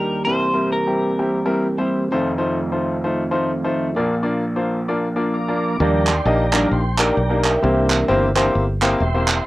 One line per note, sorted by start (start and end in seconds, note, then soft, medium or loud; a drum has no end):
0.00 0.23 D#2 medium
0.00 0.23 D#3 medium
0.00 0.26 D#3 medium
0.00 0.17 G3 medium
0.00 2.09 G3 soft
0.00 0.25 A#3 soft
0.00 0.17 D4 medium
0.00 0.26 D4 soft
0.00 0.17 D#4 soft
0.00 0.17 G4 medium
0.00 2.08 G4 medium
0.00 0.24 A#4 medium
0.25 2.07 C2 medium
0.25 2.07 C3 medium
0.25 2.09 E3 soft
0.25 0.45 G3 medium
0.25 2.09 A#3 medium
0.25 3.92 C4 soft
0.25 0.45 C4 medium
0.25 0.45 E4 medium
0.25 0.45 A#4 medium
0.25 0.72 C5 medium
0.53 0.73 G3 medium
0.53 0.73 C4 medium
0.53 0.73 E4 medium
0.53 0.73 A#4 medium
0.72 1.88 A#4 medium
0.87 1.10 G3 medium
0.87 1.10 C4 soft
0.87 1.10 E4 medium
0.87 1.10 G4 medium
1.19 1.37 G3 medium
1.19 1.37 C4 medium
1.19 1.37 E4 medium
1.19 1.37 G4 medium
1.45 1.65 G3 medium
1.45 1.65 C4 medium
1.45 1.65 E4 medium
1.45 1.65 A#4 medium
1.78 2.01 G3 medium
1.78 2.01 C4 medium
1.78 2.01 E4 medium
1.78 2.01 C5 medium
2.11 3.92 F1 medium
2.11 3.92 F2 medium
2.11 3.94 D#3 medium
2.11 5.76 F3 medium
2.11 3.94 A3 medium
2.11 2.30 A3 medium
2.11 2.29 D#4 medium
2.11 3.94 F4 medium
2.11 2.30 F4 medium
2.11 2.29 C5 medium
2.38 2.57 A3 medium
2.38 2.57 D#4 medium
2.38 2.57 F4 medium
2.38 2.57 C5 medium
2.72 2.94 A3 medium
2.72 2.94 D#4 medium
2.72 2.94 F4 medium
2.72 2.94 C5 medium
3.04 3.22 A3 medium
3.04 3.22 D#4 medium
3.04 3.22 F4 medium
3.04 3.22 C5 medium
3.31 3.50 A3 medium
3.31 3.50 D#4 medium
3.31 3.50 F4 medium
3.31 3.50 C5 medium
3.64 3.87 A3 medium
3.64 3.86 D#4 medium
3.64 3.87 F4 medium
3.64 3.87 C5 medium
3.95 5.76 A#1 medium
3.95 5.76 A#2 medium
3.95 5.78 A#3 medium
3.95 4.14 A#3 medium
3.95 5.78 D4 medium
3.95 4.14 D4 medium
3.95 4.14 F4 medium
3.95 4.14 D5 medium
4.23 4.42 A#3 medium
4.23 4.41 D4 medium
4.23 4.42 F4 medium
4.23 4.42 D5 medium
4.56 4.78 A#3 medium
4.56 4.78 D4 medium
4.56 4.78 F4 medium
4.56 4.78 C5 medium
4.88 5.06 A#3 medium
4.88 5.06 D4 medium
4.88 5.06 F4 medium
4.88 5.06 D5 medium
5.16 5.34 A#3 medium
5.16 5.34 D4 medium
5.16 5.34 F4 medium
5.16 5.34 D5 medium
5.34 5.77 F5 medium
5.34 5.77 A#5 medium
5.34 5.81 D6 medium
5.48 5.71 A#3 medium
5.48 5.70 D4 medium
5.48 5.70 F4 medium
5.48 5.70 D5 medium
5.80 6.19 D#2 loud
5.80 6.49 D#3 medium
5.80 6.13 F3 medium
5.80 6.13 G3 soft
5.80 6.13 A#3 medium
5.80 6.13 D4 medium
5.80 6.13 D#4 medium
5.80 6.13 G4 medium
5.80 6.13 D5 medium
5.80 6.69 D5 medium
5.80 6.68 G5 medium
5.80 6.09 A#5 loud
6.07 6.25 C6 loud
6.07 clap loud
6.25 6.65 A#1 loud
6.25 6.44 A#3 medium
6.25 6.43 D4 medium
6.25 6.43 D#4 medium
6.25 6.43 G4 medium
6.25 6.43 D#5 medium
6.25 6.51 A#5 medium
6.53 6.71 F3 medium
6.53 6.71 G3 medium
6.53 6.80 A#3 medium
6.53 6.80 D4 medium
6.53 6.71 D4 medium
6.53 6.80 D#4 medium
6.53 6.80 G4 medium
6.53 6.80 A#4 medium
6.53 6.74 A#5 loud
6.53 clap loud
6.71 7.10 A#1 medium
6.71 6.98 G5 medium
6.71 6.97 C6 medium
6.98 7.17 A#3 medium
6.98 7.17 D4 medium
6.98 7.17 D#4 medium
6.98 7.17 G4 medium
6.98 7.17 A#4 medium
6.98 7.60 D5 medium
6.98 7.44 G5 medium
6.98 7.46 A#5 medium
6.98 clap loud
7.17 7.56 B1 medium
7.30 7.53 A#3 medium
7.30 7.53 D4 medium
7.30 7.53 D#4 medium
7.30 7.53 G4 medium
7.30 7.53 A#4 medium
7.44 8.32 A#4 medium
7.44 8.32 E5 medium
7.44 7.87 G5 medium
7.44 clap loud
7.61 8.02 C2 loud
7.61 8.32 C3 medium
7.61 8.31 E3 medium
7.61 8.31 A#3 soft
7.61 7.96 A#3 medium
7.61 7.95 C4 medium
7.61 8.32 D4 medium
7.61 7.95 E4 medium
7.61 7.95 G4 medium
7.61 7.96 C5 medium
7.90 clap medium
8.08 8.48 G1 medium
8.08 8.26 A#3 medium
8.08 8.26 C4 medium
8.08 8.26 E4 medium
8.08 8.26 G4 medium
8.08 8.26 C5 loud
8.34 8.52 E3 medium
8.34 8.53 A#3 medium
8.34 8.63 A#3 medium
8.34 8.63 C4 medium
8.34 8.53 D4 medium
8.34 8.63 E4 medium
8.34 8.63 G4 medium
8.34 8.63 C5 loud
8.34 clap loud
8.55 8.94 G1 medium
8.82 9.00 A#3 loud
8.82 9.00 C4 medium
8.82 9.00 E4 medium
8.82 9.00 G4 medium
8.82 9.00 C5 loud
8.82 clap loud
9.00 9.39 E1 medium
9.00 9.44 E5 medium
9.00 9.44 G5 medium
9.00 9.47 C6 loud
9.14 9.37 A#3 medium
9.14 9.37 C4 medium
9.14 9.37 E4 medium
9.14 9.37 G4 medium
9.14 9.37 C5 medium
9.28 clap loud